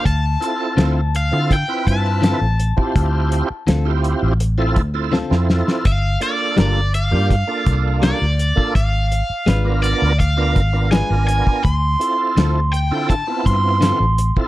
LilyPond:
<<
  \new Staff \with { instrumentName = "Overdriven electric guitar" } { \time 4/4 \key g \mixolydian \tempo 4 = 83 a''4. f''8 g''8 a''4.~ | a''4. r2 r8 | f''8 d''4 f''4. d''4 | eis''4. d''8 eis''4 gis''8 gis''8 |
c'''4. g''8 a''8 c'''4. | }
  \new Staff \with { instrumentName = "Tonewheel organ" } { \time 4/4 \key g \mixolydian r8 <c' e' f' a'>8. r8 <c' e' f' a'>16 r16 <c' e' f' b'>4 r8 <c' e' f' g'>16~ | <c' e' f' g'>8. r8 <c' e' f' g'>8. r16 <c' e' f' a'>16 r16 <c' e' f' a'>16 r16 <c' e' f' a'>8. | r8 <bes d' f' a'>8. r8 <bes d' f' g'>16 r16 <bes d' f' a'>4 r8 <bes d' f' a'>16 | r4 r16 <b d' eis' bes'>8. r16 <b d' eis' bes'>16 r16 <b d' eis' bes'>16 r16 <b d' eis' bes'>8. |
r8 <c' e' f' a'>8. r8 <c' e' f' a'>16 r16 <b c' e' f'>4 r8 <c' e' f' a'>16 | }
  \new Staff \with { instrumentName = "Clean electric guitar" } { \time 4/4 \key g \mixolydian r4 <d c' f' a'>8 r4. <d c' f' a'>8 r8 | r4 <d c' f' a'>8 r4. <d c' f' a'>8 r8 | r4 <g d' f' bes'>8 r4. <g d' f' bes'>8 r8 | r4 <gis d' eis' b'>8 r4. <gis d' eis' b'>8 r8 |
r4 <d c' f' a'>8 r4. <d c' f' a'>8 r8 | }
  \new Staff \with { instrumentName = "Fingered electric bass" } { \clef bass \time 4/4 \key g \mixolydian d,8 r8 d,8. d8 r16 g,8. a,,8 r16 | d,8. r16 d,8. a,,8. d,8. f,8 r16 | g,,8 r8 g,,8. g,8 r16 c,8. d,8 r16 | gis,,8. r16 gis,,8. d,8. gis,,8. gis,,8 r16 |
d,8 r8 d,8. d8 r16 g,8. a,,8 r16 | }
  \new DrumStaff \with { instrumentName = "Drums" } \drummode { \time 4/4 <hh bd>8 hh8 <hh sn>8 hh8 <hh bd>8 <hh bd>8 <hh sn>8 hh16 bd16 | <hh bd>8 hh8 <hh sn>8 hh8 hh8 <hh bd>8 sn16 sn16 sn16 sn16 | <hh bd>8 hh8 <hh sn>8 hh8 <hh bd>8 <hh bd>8 <hh sn>8 hh16 bd16 | <hh bd>8 hh8 <hh sn>8 hh8 <hh bd>8 <hh bd>8 <hh sn>8 hh16 bd16 |
<hh bd>8 hh8 <hh sn>8 hh8 <hh bd>8 <hh bd>8 <hh sn>8 hh16 bd16 | }
>>